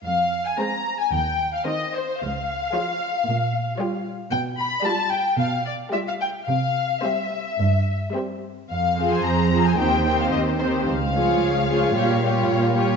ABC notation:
X:1
M:4/4
L:1/16
Q:1/4=111
K:Fm
V:1 name="Violin section"
f3 a b3 a g3 f e2 c2 | f12- f2 z2 | g2 =b2 =a2 g2 f2 =d2 =e f g2 | f4 =e8 z4 |
f3 a b3 a g3 f e2 c2 | f12- f2 z2 |]
V:2 name="Violin section"
z4 [Ac]4 z4 [Gc]4 | z4 [Ad]4 z4 [Gd]4 | z4 [G=d]4 z4 [Gd]4 | z4 [Gc]4 z4 [Gc]4 |
z2 [Ac]4 [Ac]2 [Gc]2 [Gc]4 [Gc]2 | z2 [Ad]4 [Ad]2 [Gd]2 [Gd]4 [Gd]2 |]
V:3 name="Viola section"
z4 [A,C]4 z4 [E,C]4 | z4 [F,F]4 z4 [G,F]4 | z4 [G,F]4 z4 [G,F]4 | z4 [G,C]4 z4 [G,C]4 |
z2 [F,C]4 [F,C]2 [E,C]2 [E,C]4 [E,C]2 | z2 [F,F]4 [F,F]2 [G,F]2 [G,F]4 [G,F]2 |]
V:4 name="Cello section" clef=bass
F,,4 z4 E,,4 z4 | D,,4 z4 B,,4 z4 | =B,,4 z4 B,,4 z4 | C,4 z4 G,,4 z4 |
F,,4 F,,4 E,,4 E,,4 | D,,4 D,,4 B,,4 B,,4 |]